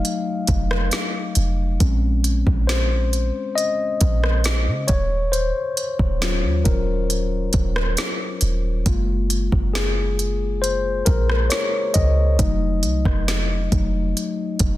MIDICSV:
0, 0, Header, 1, 4, 480
1, 0, Start_track
1, 0, Tempo, 882353
1, 982, Time_signature, 4, 2, 24, 8
1, 8037, End_track
2, 0, Start_track
2, 0, Title_t, "Tine electric piano"
2, 0, Program_c, 0, 4
2, 0, Control_c, 0, 64, 127
2, 0, Note_on_c, 0, 54, 50
2, 0, Note_on_c, 0, 57, 46
2, 0, Note_on_c, 0, 63, 55
2, 0, Note_on_c, 0, 75, 114
2, 0, Note_on_c, 0, 77, 97
2, 237, Note_off_c, 0, 77, 0
2, 981, Note_on_c, 0, 56, 61
2, 985, Note_on_c, 0, 60, 54
2, 988, Note_on_c, 0, 61, 65
2, 989, Control_c, 0, 64, 0
2, 990, Note_off_c, 0, 54, 0
2, 991, Note_off_c, 0, 57, 0
2, 991, Note_off_c, 0, 75, 0
2, 992, Note_off_c, 0, 63, 0
2, 1074, Control_c, 0, 64, 127
2, 1454, Note_on_c, 0, 72, 92
2, 1680, Note_off_c, 0, 56, 0
2, 1681, Note_off_c, 0, 60, 0
2, 1683, Note_off_c, 0, 61, 0
2, 1934, Note_on_c, 0, 75, 114
2, 1952, Note_off_c, 0, 72, 0
2, 2652, Note_on_c, 0, 73, 102
2, 2670, Control_c, 0, 64, 0
2, 2679, Note_off_c, 0, 75, 0
2, 2756, Control_c, 0, 64, 127
2, 2880, Note_off_c, 0, 73, 0
2, 2894, Note_on_c, 0, 72, 105
2, 3378, Note_on_c, 0, 54, 61
2, 3381, Note_on_c, 0, 61, 53
2, 3385, Note_on_c, 0, 65, 67
2, 3615, Note_on_c, 0, 70, 78
2, 3639, Note_off_c, 0, 72, 0
2, 3699, Note_off_c, 0, 54, 0
2, 3700, Note_off_c, 0, 61, 0
2, 3702, Note_off_c, 0, 65, 0
2, 4317, Note_off_c, 0, 70, 0
2, 4819, Note_on_c, 0, 56, 57
2, 4822, Note_on_c, 0, 58, 56
2, 4825, Note_on_c, 0, 65, 65
2, 4830, Control_c, 0, 64, 0
2, 4911, Control_c, 0, 64, 127
2, 5296, Note_on_c, 0, 68, 88
2, 5775, Note_on_c, 0, 72, 106
2, 5793, Note_off_c, 0, 68, 0
2, 6014, Note_on_c, 0, 70, 93
2, 6026, Note_off_c, 0, 72, 0
2, 6241, Note_off_c, 0, 70, 0
2, 6254, Note_on_c, 0, 73, 100
2, 6495, Note_on_c, 0, 75, 103
2, 6505, Note_off_c, 0, 73, 0
2, 6719, Note_off_c, 0, 56, 0
2, 6720, Note_off_c, 0, 58, 0
2, 6722, Note_off_c, 0, 65, 0
2, 6738, Note_on_c, 0, 54, 62
2, 6741, Note_on_c, 0, 57, 54
2, 6744, Note_on_c, 0, 63, 68
2, 6750, Control_c, 0, 64, 0
2, 6846, Control_c, 0, 64, 127
2, 7438, Note_off_c, 0, 54, 0
2, 7440, Note_off_c, 0, 57, 0
2, 7441, Note_off_c, 0, 63, 0
2, 7460, Note_on_c, 0, 54, 51
2, 7462, Note_on_c, 0, 57, 47
2, 7464, Note_on_c, 0, 63, 55
2, 7679, Note_off_c, 0, 54, 0
2, 7680, Note_off_c, 0, 57, 0
2, 7681, Note_off_c, 0, 63, 0
2, 8037, Note_off_c, 0, 75, 0
2, 8037, End_track
3, 0, Start_track
3, 0, Title_t, "808-style bass"
3, 0, Program_c, 1, 38
3, 263, Note_on_c, 1, 29, 106
3, 493, Note_off_c, 1, 29, 0
3, 743, Note_on_c, 1, 29, 103
3, 973, Note_off_c, 1, 29, 0
3, 982, Note_on_c, 1, 34, 111
3, 1327, Note_off_c, 1, 34, 0
3, 1342, Note_on_c, 1, 34, 102
3, 1803, Note_off_c, 1, 34, 0
3, 2183, Note_on_c, 1, 34, 107
3, 2542, Note_on_c, 1, 49, 105
3, 2550, Note_off_c, 1, 34, 0
3, 2656, Note_off_c, 1, 49, 0
3, 2661, Note_on_c, 1, 27, 101
3, 3007, Note_off_c, 1, 27, 0
3, 3261, Note_on_c, 1, 27, 114
3, 3501, Note_on_c, 1, 39, 99
3, 3509, Note_off_c, 1, 27, 0
3, 3615, Note_off_c, 1, 39, 0
3, 3621, Note_on_c, 1, 27, 98
3, 4082, Note_off_c, 1, 27, 0
3, 4101, Note_on_c, 1, 27, 109
3, 4332, Note_off_c, 1, 27, 0
3, 4581, Note_on_c, 1, 27, 103
3, 4812, Note_off_c, 1, 27, 0
3, 4819, Note_on_c, 1, 30, 118
3, 5166, Note_off_c, 1, 30, 0
3, 5181, Note_on_c, 1, 30, 105
3, 6000, Note_off_c, 1, 30, 0
3, 6022, Note_on_c, 1, 34, 101
3, 6252, Note_off_c, 1, 34, 0
3, 6503, Note_on_c, 1, 37, 108
3, 6733, Note_off_c, 1, 37, 0
3, 6741, Note_on_c, 1, 29, 114
3, 6984, Note_on_c, 1, 36, 95
3, 6992, Note_off_c, 1, 29, 0
3, 7097, Note_off_c, 1, 36, 0
3, 7101, Note_on_c, 1, 29, 107
3, 7447, Note_off_c, 1, 29, 0
3, 7464, Note_on_c, 1, 29, 102
3, 7693, Note_off_c, 1, 29, 0
3, 7943, Note_on_c, 1, 29, 106
3, 8037, Note_off_c, 1, 29, 0
3, 8037, End_track
4, 0, Start_track
4, 0, Title_t, "Drums"
4, 26, Note_on_c, 9, 42, 67
4, 81, Note_off_c, 9, 42, 0
4, 258, Note_on_c, 9, 42, 77
4, 263, Note_on_c, 9, 36, 105
4, 313, Note_off_c, 9, 42, 0
4, 318, Note_off_c, 9, 36, 0
4, 386, Note_on_c, 9, 37, 98
4, 440, Note_off_c, 9, 37, 0
4, 497, Note_on_c, 9, 42, 67
4, 505, Note_on_c, 9, 38, 114
4, 552, Note_off_c, 9, 42, 0
4, 559, Note_off_c, 9, 38, 0
4, 736, Note_on_c, 9, 42, 84
4, 790, Note_off_c, 9, 42, 0
4, 981, Note_on_c, 9, 42, 78
4, 982, Note_on_c, 9, 36, 122
4, 1035, Note_off_c, 9, 42, 0
4, 1036, Note_off_c, 9, 36, 0
4, 1220, Note_on_c, 9, 42, 74
4, 1274, Note_off_c, 9, 42, 0
4, 1342, Note_on_c, 9, 36, 99
4, 1396, Note_off_c, 9, 36, 0
4, 1464, Note_on_c, 9, 38, 99
4, 1464, Note_on_c, 9, 42, 73
4, 1519, Note_off_c, 9, 38, 0
4, 1519, Note_off_c, 9, 42, 0
4, 1703, Note_on_c, 9, 42, 58
4, 1757, Note_off_c, 9, 42, 0
4, 1946, Note_on_c, 9, 42, 72
4, 2001, Note_off_c, 9, 42, 0
4, 2179, Note_on_c, 9, 42, 78
4, 2183, Note_on_c, 9, 36, 109
4, 2234, Note_off_c, 9, 42, 0
4, 2237, Note_off_c, 9, 36, 0
4, 2304, Note_on_c, 9, 37, 91
4, 2359, Note_off_c, 9, 37, 0
4, 2417, Note_on_c, 9, 42, 72
4, 2424, Note_on_c, 9, 38, 118
4, 2471, Note_off_c, 9, 42, 0
4, 2478, Note_off_c, 9, 38, 0
4, 2655, Note_on_c, 9, 42, 86
4, 2661, Note_on_c, 9, 36, 115
4, 2709, Note_off_c, 9, 42, 0
4, 2715, Note_off_c, 9, 36, 0
4, 2900, Note_on_c, 9, 42, 77
4, 2955, Note_off_c, 9, 42, 0
4, 3140, Note_on_c, 9, 42, 77
4, 3194, Note_off_c, 9, 42, 0
4, 3261, Note_on_c, 9, 36, 96
4, 3315, Note_off_c, 9, 36, 0
4, 3383, Note_on_c, 9, 38, 98
4, 3383, Note_on_c, 9, 42, 76
4, 3437, Note_off_c, 9, 38, 0
4, 3437, Note_off_c, 9, 42, 0
4, 3620, Note_on_c, 9, 42, 57
4, 3622, Note_on_c, 9, 36, 105
4, 3674, Note_off_c, 9, 42, 0
4, 3676, Note_off_c, 9, 36, 0
4, 3862, Note_on_c, 9, 42, 72
4, 3917, Note_off_c, 9, 42, 0
4, 4095, Note_on_c, 9, 42, 79
4, 4101, Note_on_c, 9, 36, 109
4, 4149, Note_off_c, 9, 42, 0
4, 4155, Note_off_c, 9, 36, 0
4, 4222, Note_on_c, 9, 37, 97
4, 4276, Note_off_c, 9, 37, 0
4, 4336, Note_on_c, 9, 42, 71
4, 4343, Note_on_c, 9, 38, 115
4, 4390, Note_off_c, 9, 42, 0
4, 4398, Note_off_c, 9, 38, 0
4, 4574, Note_on_c, 9, 42, 87
4, 4628, Note_off_c, 9, 42, 0
4, 4819, Note_on_c, 9, 42, 78
4, 4820, Note_on_c, 9, 36, 123
4, 4874, Note_off_c, 9, 36, 0
4, 4874, Note_off_c, 9, 42, 0
4, 5060, Note_on_c, 9, 42, 74
4, 5114, Note_off_c, 9, 42, 0
4, 5181, Note_on_c, 9, 36, 104
4, 5235, Note_off_c, 9, 36, 0
4, 5305, Note_on_c, 9, 38, 103
4, 5305, Note_on_c, 9, 42, 74
4, 5360, Note_off_c, 9, 38, 0
4, 5360, Note_off_c, 9, 42, 0
4, 5544, Note_on_c, 9, 42, 58
4, 5598, Note_off_c, 9, 42, 0
4, 5787, Note_on_c, 9, 42, 71
4, 5841, Note_off_c, 9, 42, 0
4, 6017, Note_on_c, 9, 42, 82
4, 6022, Note_on_c, 9, 36, 109
4, 6072, Note_off_c, 9, 42, 0
4, 6077, Note_off_c, 9, 36, 0
4, 6145, Note_on_c, 9, 37, 94
4, 6199, Note_off_c, 9, 37, 0
4, 6258, Note_on_c, 9, 42, 69
4, 6265, Note_on_c, 9, 38, 120
4, 6312, Note_off_c, 9, 42, 0
4, 6320, Note_off_c, 9, 38, 0
4, 6496, Note_on_c, 9, 42, 86
4, 6503, Note_on_c, 9, 36, 82
4, 6550, Note_off_c, 9, 42, 0
4, 6558, Note_off_c, 9, 36, 0
4, 6740, Note_on_c, 9, 42, 77
4, 6741, Note_on_c, 9, 36, 123
4, 6795, Note_off_c, 9, 36, 0
4, 6795, Note_off_c, 9, 42, 0
4, 6979, Note_on_c, 9, 42, 73
4, 7033, Note_off_c, 9, 42, 0
4, 7101, Note_on_c, 9, 36, 105
4, 7105, Note_on_c, 9, 37, 61
4, 7156, Note_off_c, 9, 36, 0
4, 7159, Note_off_c, 9, 37, 0
4, 7225, Note_on_c, 9, 38, 100
4, 7225, Note_on_c, 9, 42, 75
4, 7280, Note_off_c, 9, 38, 0
4, 7280, Note_off_c, 9, 42, 0
4, 7464, Note_on_c, 9, 36, 104
4, 7464, Note_on_c, 9, 42, 58
4, 7518, Note_off_c, 9, 42, 0
4, 7519, Note_off_c, 9, 36, 0
4, 7708, Note_on_c, 9, 42, 66
4, 7762, Note_off_c, 9, 42, 0
4, 7939, Note_on_c, 9, 42, 78
4, 7944, Note_on_c, 9, 36, 105
4, 7994, Note_off_c, 9, 42, 0
4, 7998, Note_off_c, 9, 36, 0
4, 8037, End_track
0, 0, End_of_file